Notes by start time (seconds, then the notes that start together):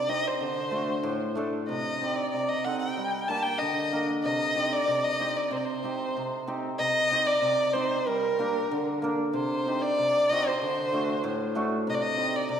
Already playing: C3 D5
0.09 C4 D#4 G4 D#5
0.27 C5
0.41 D3
0.71 A3 D4 F#4
1.03 A2
1.35 A3 D4 A4
1.69 C3 D#5
2.02 C4 D#4 G4
2.16 D5
2.32 C3 D5
2.49 D#5
2.65 C4 D#4 A4 F#5
2.79 G5
2.97 G3
3.28 A#3 D4 G4 A5
3.43 G5
3.58 D3 D#5
3.92 A#3 D4 A#4
4.23 C3 D#5
4.55 C4 D#4 G4
4.72 D5
4.88 C3
5.05 D#5
5.20 C4 D#4 G4
5.36 D5
5.51 C3 C5
5.57 D5
5.65 C5
5.83 C4 D#4 G4
6.17 C3
6.47 C4 D#4 G4
6.79 C3 D#5
7.11 C4 D#4 G4
7.27 D5
7.42 C3
7.73 C4 D#4 G4 C5
8.07 G3 A#4
8.39 A#3 D4 G4
8.71 D3
9.02 A#3 D4 A#4
9.33 C3 C5
9.65 C4 D#4 G4
9.82 D5
9.98 C3
10.30 C4 D#4 F#4 D#5
10.47 C5
10.62 D3
10.92 A3 D4 F#4
11.24 A2
11.55 A3 D4 F#4
11.87 C3 D#5
11.95 D5
12.02 D#5
12.17 C4 D#4 G4
12.36 D5
12.49 C3 D5